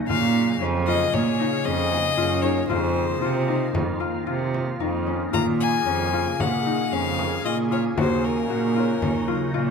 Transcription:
Already playing: harp C#4 D#4
0.08 cello A#2, ambient pad C#3 A#3 G#4, harp F4, violin F5, frame drum
0.61 cello F2, harp C#4
0.87 harp F4, violin D#5
0.95 celesta D#5
1.13 cello A#2, violin C#5, frame drum
1.40 harp D#4
1.64 cello F2, harp C#4, violin D#5
1.92 frame drum
2.17 cello F#2, harp F4, frame drum
2.42 harp D#4, violin C#5, frame drum
2.68 cello F2, ambient pad D#3 F4, harp F4, violin C5, frame drum
3.22 cello C3, harp F4, frame drum
3.48 harp D#4
3.75 cello F2, frame drum
4.00 harp F4, frame drum
4.27 cello C3, harp F4
4.54 frame drum
4.80 cello F2, harp D#4, frame drum
5.07 harp C#4
5.33 cello A#2, ambient pad C#3 G#4, harp F4, violin A#5, frame drum
5.60 violin G#5
5.86 cello F2, harp C#4
6.13 harp F4, frame drum
6.40 cello A#2, violin F#5, frame drum
6.66 harp D#4, frame drum
6.92 cello F2, harp C#4, violin F5
7.19 frame drum
7.45 cello A#2, harp F4, violin D#5, frame drum
7.71 harp F4, violin C#5, frame drum
7.97 cello D#2, ambient pad F#3 D#4, harp F#4, violin C5, frame drum
8.24 violin A#4
8.50 cello A#2, harp F#4
8.76 harp F4, celesta C#5, frame drum
9.02 cello D#2, frame drum
9.28 harp F4, frame drum
9.54 cello A#2, harp F4

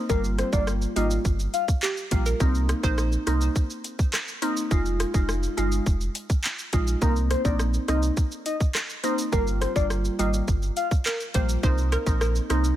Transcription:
0.09 sub bass G1, synth pluck G3 A#3 F4, soft synth lead A#4, kick, shaker
0.24 shaker
0.38 soft synth lead C5, cross-stick, closed hi-hat, shaker
0.53 sub bass G1, synth pluck G3 A#3 F4, soft synth lead D5, kick, shaker
0.67 cross-stick, shaker
0.82 shaker
0.96 sub bass G#1, synth pluck G3 A#3 F4, soft synth lead D#5, closed hi-hat, shaker
1.10 shaker
1.25 sub bass G1, kick, shaker
1.39 shaker
1.54 soft synth lead F5, closed hi-hat, shaker
1.68 kick, shaker
1.82 synth pluck G4, clap, shaker
1.97 shaker
2.11 sub bass A#1, synth pluck G3 A#3 F4, kick, closed hi-hat, shaker
2.26 synth pluck A#4, shaker
2.40 sub bass C2, synth pluck A#3 C4 D#4, kick, shaker
2.55 shaker
2.69 cross-stick, closed hi-hat, shaker
2.83 sub bass A#1, synth pluck A#3 C4 D#4 C5, kick, shaker
2.98 cross-stick, shaker
3.12 shaker
3.27 sub bass C2, synth pluck A#3 C4 D#4, cross-stick, closed hi-hat, shaker
3.41 shaker
3.56 kick, shaker
3.70 shaker
3.84 closed hi-hat, shaker
3.99 kick, shaker
4.13 cross-stick, clap, shaker
4.28 shaker
4.42 synth pluck A#3 C4 D#4, closed hi-hat, shaker
4.57 shaker
4.71 sub bass F1, synth pluck G#3 D#4 F4, kick, shaker
4.86 shaker
5.00 cross-stick, closed hi-hat, shaker
5.14 sub bass F1, synth pluck G#3 D#4 F4, kick, shaker
5.29 cross-stick, shaker
5.43 shaker
5.57 sub bass G1, synth pluck G#3 D#4 F4, closed hi-hat, shaker
5.72 shaker
5.86 sub bass F1, kick, shaker
6.01 shaker
6.15 closed hi-hat, shaker
6.30 kick, shaker
6.44 clap, shaker
6.59 shaker
6.73 sub bass A#1, synth pluck G#3 D#4 F4, kick, closed hi-hat, shaker
6.87 shaker
7.02 sub bass C2, synth pluck A#3 C4 D#4, soft synth lead A#4, kick, shaker
7.16 shaker
7.30 soft synth lead C5, cross-stick, closed hi-hat, shaker
7.45 sub bass A#1, synth pluck A#3 C4 D#4, soft synth lead D5, kick, shaker
7.59 cross-stick, shaker
7.74 shaker
7.88 sub bass C2, synth pluck A#3 C4 D#4, soft synth lead D#5, cross-stick, closed hi-hat, shaker
8.02 shaker
8.17 kick, shaker
8.31 shaker
8.46 soft synth lead D#5, closed hi-hat, shaker
8.60 kick, shaker
8.75 cross-stick, clap, shaker
8.90 shaker
9.03 synth pluck A#3 C4 D#4, soft synth lead C5, closed hi-hat, shaker
9.18 shaker
9.32 sub bass G1, synth pluck G3 A#3 F4, soft synth lead A#4, kick, shaker
9.47 shaker
9.61 soft synth lead C5, cross-stick, closed hi-hat, shaker
9.76 sub bass G1, synth pluck G3 A#3 F4, soft synth lead D5, kick, shaker
9.90 cross-stick, shaker
10.05 shaker
10.19 sub bass G#1, synth pluck G3 A#3 F4, soft synth lead D#5, closed hi-hat, shaker
10.33 shaker
10.48 sub bass G1, kick, shaker
10.62 shaker
10.77 soft synth lead F5, closed hi-hat, shaker
10.91 kick, shaker
11.06 synth pluck A#4, clap, shaker
11.20 shaker
11.34 sub bass A#1, synth pluck G3 A#3 F4 C5, kick, closed hi-hat, shaker
11.49 shaker
11.63 sub bass C2, synth pluck A#3 C4 D#4 C5, kick, shaker
11.78 shaker
11.92 synth pluck A#4, cross-stick, closed hi-hat, shaker
12.06 sub bass A#1, synth pluck A#3 C4 D#4, kick, shaker
12.21 synth pluck A#4, cross-stick, shaker
12.35 shaker
12.50 sub bass C2, synth pluck A#3 C4 D#4, cross-stick, closed hi-hat, shaker
12.64 shaker

